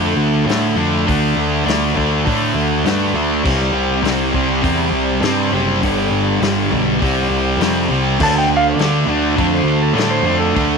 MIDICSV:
0, 0, Header, 1, 5, 480
1, 0, Start_track
1, 0, Key_signature, -1, "minor"
1, 0, Tempo, 592885
1, 869, Time_signature, 4, 2, 24, 8
1, 8725, End_track
2, 0, Start_track
2, 0, Title_t, "Electric slide guitar"
2, 0, Program_c, 0, 29
2, 6665, Note_on_c, 0, 81, 100
2, 6764, Note_off_c, 0, 81, 0
2, 6787, Note_on_c, 0, 79, 84
2, 6885, Note_off_c, 0, 79, 0
2, 6935, Note_on_c, 0, 77, 106
2, 7019, Note_off_c, 0, 77, 0
2, 7037, Note_on_c, 0, 74, 91
2, 7711, Note_off_c, 0, 74, 0
2, 7726, Note_on_c, 0, 72, 80
2, 7949, Note_off_c, 0, 72, 0
2, 7956, Note_on_c, 0, 69, 87
2, 8181, Note_on_c, 0, 72, 106
2, 8184, Note_off_c, 0, 69, 0
2, 8416, Note_off_c, 0, 72, 0
2, 8419, Note_on_c, 0, 69, 88
2, 8725, Note_off_c, 0, 69, 0
2, 8725, End_track
3, 0, Start_track
3, 0, Title_t, "Distorted electric guitar"
3, 0, Program_c, 1, 30
3, 0, Note_on_c, 1, 50, 100
3, 0, Note_on_c, 1, 57, 103
3, 0, Note_on_c, 1, 62, 111
3, 352, Note_off_c, 1, 50, 0
3, 362, Note_on_c, 1, 50, 95
3, 365, Note_off_c, 1, 57, 0
3, 366, Note_off_c, 1, 62, 0
3, 374, Note_on_c, 1, 57, 86
3, 376, Note_on_c, 1, 62, 94
3, 611, Note_off_c, 1, 50, 0
3, 620, Note_on_c, 1, 50, 92
3, 624, Note_off_c, 1, 57, 0
3, 632, Note_off_c, 1, 62, 0
3, 634, Note_on_c, 1, 57, 92
3, 642, Note_on_c, 1, 62, 87
3, 851, Note_off_c, 1, 50, 0
3, 858, Note_off_c, 1, 57, 0
3, 861, Note_on_c, 1, 50, 92
3, 864, Note_off_c, 1, 62, 0
3, 868, Note_on_c, 1, 57, 102
3, 874, Note_on_c, 1, 62, 110
3, 1323, Note_off_c, 1, 50, 0
3, 1333, Note_on_c, 1, 50, 93
3, 1335, Note_off_c, 1, 57, 0
3, 1336, Note_off_c, 1, 62, 0
3, 1345, Note_on_c, 1, 57, 90
3, 1345, Note_on_c, 1, 62, 88
3, 1572, Note_off_c, 1, 50, 0
3, 1579, Note_off_c, 1, 57, 0
3, 1582, Note_on_c, 1, 50, 90
3, 1585, Note_off_c, 1, 62, 0
3, 1589, Note_on_c, 1, 57, 97
3, 1595, Note_on_c, 1, 62, 108
3, 1820, Note_off_c, 1, 50, 0
3, 1824, Note_off_c, 1, 57, 0
3, 1829, Note_on_c, 1, 50, 98
3, 1830, Note_off_c, 1, 62, 0
3, 1834, Note_on_c, 1, 57, 107
3, 1839, Note_on_c, 1, 62, 104
3, 2298, Note_off_c, 1, 50, 0
3, 2305, Note_off_c, 1, 57, 0
3, 2308, Note_on_c, 1, 50, 84
3, 2309, Note_off_c, 1, 62, 0
3, 2314, Note_on_c, 1, 57, 103
3, 2318, Note_on_c, 1, 62, 88
3, 2536, Note_off_c, 1, 50, 0
3, 2545, Note_on_c, 1, 50, 80
3, 2547, Note_off_c, 1, 57, 0
3, 2550, Note_off_c, 1, 62, 0
3, 2557, Note_on_c, 1, 57, 94
3, 2559, Note_on_c, 1, 62, 87
3, 2773, Note_off_c, 1, 50, 0
3, 2779, Note_off_c, 1, 57, 0
3, 2780, Note_off_c, 1, 62, 0
3, 2784, Note_on_c, 1, 48, 100
3, 2793, Note_on_c, 1, 55, 115
3, 2805, Note_on_c, 1, 60, 108
3, 3252, Note_off_c, 1, 48, 0
3, 3261, Note_on_c, 1, 48, 90
3, 3267, Note_off_c, 1, 60, 0
3, 3268, Note_off_c, 1, 55, 0
3, 3271, Note_on_c, 1, 55, 97
3, 3277, Note_on_c, 1, 60, 103
3, 3491, Note_off_c, 1, 48, 0
3, 3501, Note_on_c, 1, 48, 89
3, 3512, Note_off_c, 1, 60, 0
3, 3514, Note_off_c, 1, 55, 0
3, 3518, Note_on_c, 1, 55, 98
3, 3521, Note_on_c, 1, 60, 100
3, 3735, Note_off_c, 1, 48, 0
3, 3740, Note_off_c, 1, 55, 0
3, 3745, Note_on_c, 1, 48, 103
3, 3750, Note_off_c, 1, 60, 0
3, 3750, Note_on_c, 1, 55, 104
3, 3759, Note_on_c, 1, 60, 97
3, 4221, Note_off_c, 1, 48, 0
3, 4231, Note_on_c, 1, 48, 86
3, 4236, Note_off_c, 1, 55, 0
3, 4236, Note_off_c, 1, 60, 0
3, 4246, Note_on_c, 1, 55, 88
3, 4246, Note_on_c, 1, 60, 104
3, 4462, Note_off_c, 1, 48, 0
3, 4472, Note_off_c, 1, 55, 0
3, 4472, Note_on_c, 1, 48, 90
3, 4479, Note_off_c, 1, 60, 0
3, 4482, Note_on_c, 1, 55, 83
3, 4489, Note_on_c, 1, 60, 89
3, 4696, Note_off_c, 1, 48, 0
3, 4701, Note_off_c, 1, 55, 0
3, 4705, Note_off_c, 1, 60, 0
3, 4719, Note_on_c, 1, 43, 96
3, 4722, Note_on_c, 1, 50, 100
3, 4733, Note_on_c, 1, 55, 109
3, 5185, Note_off_c, 1, 43, 0
3, 5195, Note_off_c, 1, 50, 0
3, 5195, Note_on_c, 1, 43, 91
3, 5202, Note_off_c, 1, 55, 0
3, 5205, Note_on_c, 1, 50, 92
3, 5211, Note_on_c, 1, 55, 92
3, 5427, Note_off_c, 1, 43, 0
3, 5433, Note_off_c, 1, 50, 0
3, 5437, Note_on_c, 1, 43, 89
3, 5442, Note_on_c, 1, 50, 97
3, 5443, Note_off_c, 1, 55, 0
3, 5453, Note_on_c, 1, 55, 96
3, 5659, Note_off_c, 1, 43, 0
3, 5661, Note_off_c, 1, 50, 0
3, 5667, Note_off_c, 1, 55, 0
3, 5676, Note_on_c, 1, 48, 95
3, 5680, Note_on_c, 1, 55, 111
3, 5690, Note_on_c, 1, 60, 114
3, 6153, Note_off_c, 1, 48, 0
3, 6160, Note_off_c, 1, 55, 0
3, 6163, Note_off_c, 1, 60, 0
3, 6163, Note_on_c, 1, 48, 89
3, 6170, Note_on_c, 1, 55, 90
3, 6172, Note_on_c, 1, 60, 97
3, 6391, Note_off_c, 1, 48, 0
3, 6400, Note_off_c, 1, 55, 0
3, 6401, Note_on_c, 1, 48, 86
3, 6406, Note_off_c, 1, 60, 0
3, 6410, Note_on_c, 1, 55, 84
3, 6415, Note_on_c, 1, 60, 101
3, 6621, Note_off_c, 1, 48, 0
3, 6625, Note_off_c, 1, 55, 0
3, 6628, Note_off_c, 1, 60, 0
3, 6636, Note_on_c, 1, 50, 94
3, 6647, Note_on_c, 1, 57, 100
3, 6648, Note_on_c, 1, 62, 115
3, 7108, Note_off_c, 1, 50, 0
3, 7111, Note_on_c, 1, 50, 91
3, 7117, Note_off_c, 1, 57, 0
3, 7120, Note_on_c, 1, 57, 95
3, 7121, Note_off_c, 1, 62, 0
3, 7124, Note_on_c, 1, 62, 95
3, 7347, Note_off_c, 1, 50, 0
3, 7350, Note_on_c, 1, 50, 89
3, 7357, Note_off_c, 1, 57, 0
3, 7360, Note_on_c, 1, 57, 97
3, 7366, Note_off_c, 1, 62, 0
3, 7369, Note_on_c, 1, 62, 104
3, 7566, Note_off_c, 1, 50, 0
3, 7574, Note_off_c, 1, 57, 0
3, 7576, Note_on_c, 1, 50, 111
3, 7584, Note_on_c, 1, 57, 98
3, 7586, Note_off_c, 1, 62, 0
3, 7596, Note_on_c, 1, 62, 124
3, 8044, Note_off_c, 1, 50, 0
3, 8054, Note_on_c, 1, 50, 87
3, 8055, Note_off_c, 1, 57, 0
3, 8064, Note_on_c, 1, 57, 94
3, 8065, Note_off_c, 1, 62, 0
3, 8075, Note_on_c, 1, 62, 103
3, 8299, Note_off_c, 1, 50, 0
3, 8302, Note_off_c, 1, 57, 0
3, 8309, Note_off_c, 1, 62, 0
3, 8309, Note_on_c, 1, 50, 86
3, 8312, Note_on_c, 1, 57, 93
3, 8319, Note_on_c, 1, 62, 94
3, 8524, Note_off_c, 1, 50, 0
3, 8533, Note_on_c, 1, 50, 99
3, 8536, Note_off_c, 1, 57, 0
3, 8539, Note_off_c, 1, 62, 0
3, 8546, Note_on_c, 1, 57, 116
3, 8549, Note_on_c, 1, 62, 115
3, 8725, Note_off_c, 1, 50, 0
3, 8725, Note_off_c, 1, 57, 0
3, 8725, Note_off_c, 1, 62, 0
3, 8725, End_track
4, 0, Start_track
4, 0, Title_t, "Picked electric bass"
4, 0, Program_c, 2, 34
4, 0, Note_on_c, 2, 41, 93
4, 128, Note_off_c, 2, 41, 0
4, 132, Note_on_c, 2, 38, 96
4, 369, Note_off_c, 2, 38, 0
4, 375, Note_on_c, 2, 45, 86
4, 607, Note_off_c, 2, 45, 0
4, 612, Note_on_c, 2, 41, 89
4, 849, Note_off_c, 2, 41, 0
4, 877, Note_on_c, 2, 38, 98
4, 1094, Note_off_c, 2, 38, 0
4, 1099, Note_on_c, 2, 38, 95
4, 1333, Note_off_c, 2, 38, 0
4, 1339, Note_on_c, 2, 38, 100
4, 1573, Note_off_c, 2, 38, 0
4, 1592, Note_on_c, 2, 38, 100
4, 1819, Note_off_c, 2, 38, 0
4, 1838, Note_on_c, 2, 45, 89
4, 2050, Note_off_c, 2, 45, 0
4, 2055, Note_on_c, 2, 38, 96
4, 2290, Note_off_c, 2, 38, 0
4, 2297, Note_on_c, 2, 43, 97
4, 2531, Note_off_c, 2, 43, 0
4, 2536, Note_on_c, 2, 38, 93
4, 2771, Note_off_c, 2, 38, 0
4, 2796, Note_on_c, 2, 36, 102
4, 3008, Note_off_c, 2, 36, 0
4, 3012, Note_on_c, 2, 36, 100
4, 3249, Note_off_c, 2, 36, 0
4, 3258, Note_on_c, 2, 36, 99
4, 3492, Note_off_c, 2, 36, 0
4, 3515, Note_on_c, 2, 36, 99
4, 3741, Note_off_c, 2, 36, 0
4, 3755, Note_on_c, 2, 40, 97
4, 3969, Note_off_c, 2, 40, 0
4, 3974, Note_on_c, 2, 36, 100
4, 4210, Note_off_c, 2, 36, 0
4, 4213, Note_on_c, 2, 43, 89
4, 4450, Note_off_c, 2, 43, 0
4, 4467, Note_on_c, 2, 30, 100
4, 4697, Note_off_c, 2, 30, 0
4, 4723, Note_on_c, 2, 31, 101
4, 4940, Note_off_c, 2, 31, 0
4, 4945, Note_on_c, 2, 31, 92
4, 5176, Note_off_c, 2, 31, 0
4, 5185, Note_on_c, 2, 31, 102
4, 5416, Note_off_c, 2, 31, 0
4, 5434, Note_on_c, 2, 35, 98
4, 5660, Note_off_c, 2, 35, 0
4, 5683, Note_on_c, 2, 36, 94
4, 5900, Note_off_c, 2, 36, 0
4, 5904, Note_on_c, 2, 36, 96
4, 6125, Note_off_c, 2, 36, 0
4, 6130, Note_on_c, 2, 41, 84
4, 6368, Note_off_c, 2, 41, 0
4, 6381, Note_on_c, 2, 36, 97
4, 6613, Note_off_c, 2, 36, 0
4, 6638, Note_on_c, 2, 38, 101
4, 6862, Note_off_c, 2, 38, 0
4, 6868, Note_on_c, 2, 38, 94
4, 7087, Note_off_c, 2, 38, 0
4, 7092, Note_on_c, 2, 38, 97
4, 7328, Note_off_c, 2, 38, 0
4, 7336, Note_on_c, 2, 38, 101
4, 7570, Note_off_c, 2, 38, 0
4, 7594, Note_on_c, 2, 41, 92
4, 7797, Note_off_c, 2, 41, 0
4, 7802, Note_on_c, 2, 38, 91
4, 8037, Note_off_c, 2, 38, 0
4, 8042, Note_on_c, 2, 45, 95
4, 8274, Note_off_c, 2, 45, 0
4, 8279, Note_on_c, 2, 41, 96
4, 8520, Note_off_c, 2, 41, 0
4, 8546, Note_on_c, 2, 38, 104
4, 8725, Note_off_c, 2, 38, 0
4, 8725, End_track
5, 0, Start_track
5, 0, Title_t, "Drums"
5, 398, Note_on_c, 9, 46, 63
5, 406, Note_on_c, 9, 38, 117
5, 479, Note_off_c, 9, 46, 0
5, 487, Note_off_c, 9, 38, 0
5, 880, Note_on_c, 9, 36, 121
5, 881, Note_on_c, 9, 46, 63
5, 961, Note_off_c, 9, 36, 0
5, 962, Note_off_c, 9, 46, 0
5, 1362, Note_on_c, 9, 46, 64
5, 1370, Note_on_c, 9, 38, 114
5, 1443, Note_off_c, 9, 46, 0
5, 1451, Note_off_c, 9, 38, 0
5, 1599, Note_on_c, 9, 36, 83
5, 1680, Note_off_c, 9, 36, 0
5, 1839, Note_on_c, 9, 36, 124
5, 1840, Note_on_c, 9, 46, 73
5, 1920, Note_off_c, 9, 36, 0
5, 1921, Note_off_c, 9, 46, 0
5, 2313, Note_on_c, 9, 46, 65
5, 2321, Note_on_c, 9, 38, 115
5, 2394, Note_off_c, 9, 46, 0
5, 2402, Note_off_c, 9, 38, 0
5, 2796, Note_on_c, 9, 49, 102
5, 2798, Note_on_c, 9, 36, 121
5, 2877, Note_off_c, 9, 49, 0
5, 2879, Note_off_c, 9, 36, 0
5, 3279, Note_on_c, 9, 46, 66
5, 3287, Note_on_c, 9, 38, 115
5, 3360, Note_off_c, 9, 46, 0
5, 3368, Note_off_c, 9, 38, 0
5, 3516, Note_on_c, 9, 36, 87
5, 3597, Note_off_c, 9, 36, 0
5, 3755, Note_on_c, 9, 36, 126
5, 3755, Note_on_c, 9, 46, 67
5, 3836, Note_off_c, 9, 36, 0
5, 3836, Note_off_c, 9, 46, 0
5, 4232, Note_on_c, 9, 46, 64
5, 4240, Note_on_c, 9, 38, 112
5, 4313, Note_off_c, 9, 46, 0
5, 4321, Note_off_c, 9, 38, 0
5, 4719, Note_on_c, 9, 46, 64
5, 4722, Note_on_c, 9, 36, 110
5, 4800, Note_off_c, 9, 46, 0
5, 4803, Note_off_c, 9, 36, 0
5, 5201, Note_on_c, 9, 46, 63
5, 5209, Note_on_c, 9, 38, 114
5, 5282, Note_off_c, 9, 46, 0
5, 5290, Note_off_c, 9, 38, 0
5, 5444, Note_on_c, 9, 36, 85
5, 5524, Note_off_c, 9, 36, 0
5, 5682, Note_on_c, 9, 46, 70
5, 5685, Note_on_c, 9, 36, 117
5, 5763, Note_off_c, 9, 46, 0
5, 5765, Note_off_c, 9, 36, 0
5, 6160, Note_on_c, 9, 46, 69
5, 6168, Note_on_c, 9, 38, 112
5, 6241, Note_off_c, 9, 46, 0
5, 6249, Note_off_c, 9, 38, 0
5, 6638, Note_on_c, 9, 49, 127
5, 6638, Note_on_c, 9, 57, 71
5, 6642, Note_on_c, 9, 36, 116
5, 6719, Note_off_c, 9, 49, 0
5, 6719, Note_off_c, 9, 57, 0
5, 6723, Note_off_c, 9, 36, 0
5, 7119, Note_on_c, 9, 57, 71
5, 7127, Note_on_c, 9, 38, 110
5, 7200, Note_off_c, 9, 57, 0
5, 7208, Note_off_c, 9, 38, 0
5, 7597, Note_on_c, 9, 36, 124
5, 7598, Note_on_c, 9, 57, 67
5, 7678, Note_off_c, 9, 36, 0
5, 7679, Note_off_c, 9, 57, 0
5, 8082, Note_on_c, 9, 57, 67
5, 8090, Note_on_c, 9, 38, 121
5, 8162, Note_off_c, 9, 57, 0
5, 8171, Note_off_c, 9, 38, 0
5, 8553, Note_on_c, 9, 36, 122
5, 8554, Note_on_c, 9, 57, 65
5, 8634, Note_off_c, 9, 36, 0
5, 8635, Note_off_c, 9, 57, 0
5, 8725, End_track
0, 0, End_of_file